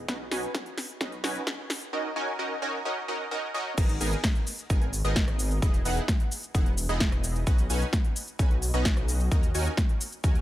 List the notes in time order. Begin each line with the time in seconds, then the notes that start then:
0.08 B1 C#4 D#4 F#4 B4 D#5, kick, snare, closed hi-hat
0.31 B1 C#4 D#4 F#4 B4 G#5, snare, open hi-hat
0.43 closed hi-hat
0.55 kick, snare, closed hi-hat
0.66 closed hi-hat
0.78 snare, open hi-hat
0.89 closed hi-hat
1.01 B1 C#4 D#4 F#4 B4 D#5, kick, snare, closed hi-hat
1.12 closed hi-hat
1.24 B1 C#4 D#4 F#4 B4 G#5, snare, open hi-hat
1.35 closed hi-hat
1.47 kick, snare, closed hi-hat
1.70 snare, open hi-hat
1.81 closed hi-hat
1.93 C#4 D#4 F#4 A#4 D#5
2.16 C#4 D#4 F#4 A#4 G#5
2.39 C#4 D#4 F#4 A#4 D#5
2.62 C#4 D#4 F#4 A#4 G#5
2.85 C#4 D#4 F#4 A#4 D#5
3.08 C#4 D#4 F#4 A#4 D#5
3.31 C#4 D#4 F#4 A#4 D#5
3.54 C#4 D#4 F#4 A#4 D#5
3.78 G#1 B3 D#4 G#4 A#4 D#5, kick, closed hi-hat, crash, shaker
3.89 closed hi-hat, shaker
4.01 G#1 B3 D#4 G#4 A#4 G#5, open hi-hat, shaker
4.12 shaker
4.24 kick, snare, closed hi-hat, shaker
4.35 closed hi-hat
4.47 open hi-hat, shaker
4.58 closed hi-hat, shaker
4.70 G#1 B3 D#4 G#4 A#4 G#5, kick, closed hi-hat, shaker
4.82 closed hi-hat
4.93 open hi-hat, shaker
5.05 G#1 B3 D#4 G#4 A#4 D#5, closed hi-hat, shaker
5.16 kick, snare, closed hi-hat, shaker
5.28 cross-stick, closed hi-hat
5.39 open hi-hat, shaker
5.51 shaker
5.62 E1 B3 D#4 E4 G#4 D#5, kick, closed hi-hat, shaker
5.74 closed hi-hat, shaker
5.85 E1 B3 D#4 E4 G#4 F#5, open hi-hat, shaker
5.97 closed hi-hat, shaker
6.08 kick, snare, closed hi-hat, shaker
6.20 closed hi-hat
6.32 open hi-hat, shaker
6.43 closed hi-hat, shaker
6.55 E1 B3 D#4 E4 G#4 F#5, kick, closed hi-hat, shaker
6.66 closed hi-hat
6.78 open hi-hat, shaker
6.89 E1 B3 D#4 E4 G#4 D#5, shaker
7.00 kick, snare, closed hi-hat, shaker
7.12 cross-stick, closed hi-hat
7.24 open hi-hat, shaker
7.35 shaker
7.47 B1 C#4 D#4 F#4 B4 D#5, kick, closed hi-hat, shaker
7.58 closed hi-hat, shaker
7.70 B1 C#4 D#4 F#4 B4 G#5, open hi-hat, shaker
7.81 closed hi-hat, shaker
7.93 kick, snare, closed hi-hat, shaker
8.05 closed hi-hat
8.16 open hi-hat, shaker
8.28 closed hi-hat, shaker
8.39 B1 C#4 D#4 F#4 B4 G#5, kick, closed hi-hat, shaker
8.51 closed hi-hat
8.62 open hi-hat, shaker
8.74 B1 C#4 D#4 F#4 B4 D#5, shaker
8.85 kick, snare, closed hi-hat, shaker
8.97 cross-stick, closed hi-hat
9.08 open hi-hat, shaker
9.20 shaker
9.32 D#2 C#4 D#4 F#4 A#4 D#5, kick, closed hi-hat, shaker
9.43 closed hi-hat, shaker
9.55 D#2 C#4 D#4 F#4 A#4 G#5, open hi-hat, shaker
9.66 shaker
9.77 kick, snare, closed hi-hat, shaker
9.89 closed hi-hat
10.01 open hi-hat, shaker
10.12 closed hi-hat, shaker
10.24 D#2 C#4 D#4 F#4 A#4 G#5, kick, closed hi-hat, shaker
10.35 closed hi-hat